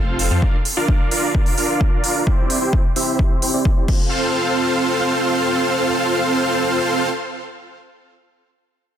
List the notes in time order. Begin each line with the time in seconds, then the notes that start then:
Already playing: F1 C4 F4 A4 C5 F5
0.19 open hi-hat
0.31 F2 C4 F4 A4 C5 F5
0.42 D4 D5, kick
0.65 open hi-hat
0.77 D4 F4 A#4 D5 F5
0.88 kick
1.11 D4 F4 A#4 D5 F5, open hi-hat
1.35 D4 A#4 D5, kick
1.46 open hi-hat
1.58 D4 F4 A#4 D5 F5, open hi-hat
1.81 kick
2.04 open hi-hat
2.27 C4 C5, kick
2.50 open hi-hat
2.61 C4 E4 G4 C5 G5
2.73 kick
2.96 C4 E4 G4 C5 E5, open hi-hat
3.19 kick
3.42 C4 E4 G4 C5 G5, open hi-hat
3.54 C4 E4 G4 C5 D5
3.65 kick
3.77 C4 E4 G4 C5 D5
3.88 kick, crash